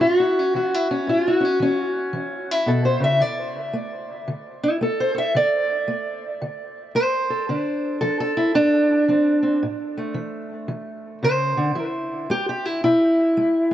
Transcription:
Already playing: A3 C#4
0.01 A2 F4
0.18 E4 F#4
0.39 C#4
0.54 E3 F#4
0.74 E4
0.91 C#4
1.07 A2 F4
1.28 E4
1.33 F#4
1.40 C#4
1.45 C#4
1.60 E3 C#4
2.13 E3
2.51 E4
2.66 B2 A4
2.85 C5
3.00 C#3 E5
3.20 D3 D5
3.73 A3
4.28 D3
4.63 E4
4.81 A3 A4
5.00 C5
5.15 A4 E5
5.35 D3 D5
5.88 A3
6.42 D3
6.95 A3 C5
7.30 A4
7.49 D3 D4
8.01 F3 A4
8.20 A4
8.37 E4
8.54 A2 D4
9.08 F3 C4
9.43 C4
9.63 A2
9.98 A3
10.14 E3
10.68 E3
11.23 C#3 C5
11.57 D3
11.75 E3 E4
12.30 G#3 G4
12.49 G4
12.65 E4
12.84 B2 E4
13.37 G#3

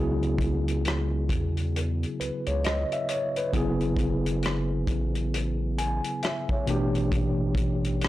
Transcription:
Already playing: C#2 C#3 F#3 B3 E4 F#4
0.00 G#4
0.23 closed hi-hat
0.38 kick, closed hi-hat
0.68 closed hi-hat
0.85 cross-stick, closed hi-hat
1.29 E2, kick, closed hi-hat
1.57 closed hi-hat
1.76 closed hi-hat
2.03 closed hi-hat
2.20 C#2 B4, closed hi-hat
2.47 C#2 C#5, closed hi-hat
2.64 D#5, cross-stick, closed hi-hat
2.92 E5, closed hi-hat
3.09 C#5, closed hi-hat
3.36 B4, closed hi-hat
3.53 F#1 C#3 F#3 B3 E4 G#4, kick, closed hi-hat
3.81 closed hi-hat
3.97 kick, closed hi-hat
4.26 closed hi-hat
4.43 cross-stick, closed hi-hat
4.87 A1, kick, closed hi-hat
5.15 closed hi-hat
5.34 closed hi-hat
5.78 G#5, closed hi-hat
6.04 closed hi-hat
6.23 E5, cross-stick, closed hi-hat
6.49 C#5, kick
6.66 A1 B2 E3 A3 D4, closed hi-hat
6.71 G4
6.95 closed hi-hat
7.12 kick, closed hi-hat
7.55 kick, closed hi-hat
7.85 closed hi-hat
8.01 cross-stick, closed hi-hat

